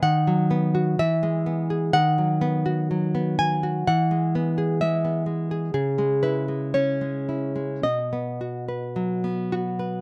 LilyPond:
\new Staff \with { instrumentName = "Nylon-string guitar" } { \time 2/4 \key e \lydian \tempo 4 = 62 << { fis''4 e''4 | \key b \mixolydian fis''4. gis''8 | fis''4 e''8 r8 | gis'8 b'8 cis''4 |
dis''4. fis'8 | } \\ { dis16 fis16 b16 fis'16 e16 gis16 b16 gis'16 | dis16 fis16 b16 fis'16 fis16 b16 fis16 fis'16 | e16 gis16 b16 gis'16 gis16 b16 gis16 gis'16 | cis16 gis16 e'16 gis16 cis'16 gis16 e'16 gis16 |
b,16 b16 fis'16 b'16 fis16 b16 fis'16 b'16 | } >> }